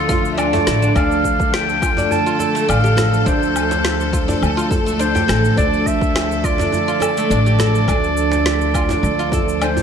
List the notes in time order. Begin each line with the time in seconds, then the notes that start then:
Already playing: D2 D3 F3 A3 D4 F4 A4
0.07 F3 A3 D4 F4, kick, djembe bass, cabasa
0.12 A4
0.25 cabasa
0.32 E5
0.38 D4 D5, cabasa, low woodblock
0.53 A3, djembe tone, djembe bass, cabasa
0.67 A1 E4, snare, cabasa
0.82 D4, cabasa
0.94 D2 F3 A3 D4 A4 F5, kick, cabasa, low woodblock
0.98 A4
1.11 cabasa
1.24 kick, cabasa
1.40 kick, cabasa
1.53 G5, snare, cabasa
1.69 cabasa
1.82 F4, kick, cabasa, low woodblock
1.97 D4, djembe tone, djembe bass, cabasa
2.11 A5, djembe bass, cabasa
2.26 F4, cabasa
2.39 A4, djembe tone, cabasa
2.55 A3, cabasa
2.69 A1 D4 F5, cabasa, low woodblock
2.84 G4, cabasa
2.97 F3 A3 D4 A4, snare, djembe tone, cabasa
3.14 cabasa
3.25 D2 F3 A3 D4 C5, kick, cabasa
3.29 A4
3.43 cabasa
3.56 cabasa, low woodblock
3.71 djembe slap, cabasa
3.85 snare, cabasa
4.00 cabasa
4.13 F4, kick, cabasa
4.28 D4, djembe tone, djembe bass, cabasa
4.42 D2, cabasa, low woodblock
4.57 F4, cabasa
4.71 A4, kick, djembe bass, cabasa
4.86 A3, cabasa
4.99 D4 C5, cabasa
5.15 G4, djembe tone, djembe bass, cabasa
5.27 A1 F3 A3 D4 A4, snare, cabasa, low woodblock
5.45 cabasa
5.55 D2 F3 A3 D4 D5, kick, cabasa
5.59 A4
5.73 cabasa
5.86 E5, kick, cabasa
6.01 kick, cabasa
6.16 snare, cabasa, low woodblock
6.32 cabasa
6.44 F4 D5, kick, cabasa
6.58 D4, djembe tone, djembe bass, cabasa
6.72 djembe bass, cabasa
6.88 F4, cabasa
7.00 A4, djembe tone, cabasa, low woodblock
7.17 A3, cabasa
7.30 A1 D4, cabasa
7.46 G4, cabasa
7.58 F3 A3 D4 A4, snare, djembe tone, cabasa
7.75 cabasa
7.85 D2 F3 A3 D4 A4, kick, cabasa, low woodblock
8.04 cabasa
8.17 cabasa
8.32 djembe slap, cabasa
8.46 snare, cabasa
8.61 cabasa
8.74 F4, kick, cabasa, low woodblock
8.89 D4, djembe tone, djembe bass, cabasa
9.03 D2, cabasa
9.19 F4, cabasa
9.29 F3 A3 D4 A4, kick, djembe bass, cabasa
9.33 A4
9.49 cabasa
9.61 D4 C5, cabasa, low woodblock
9.77 djembe tone, djembe bass, cabasa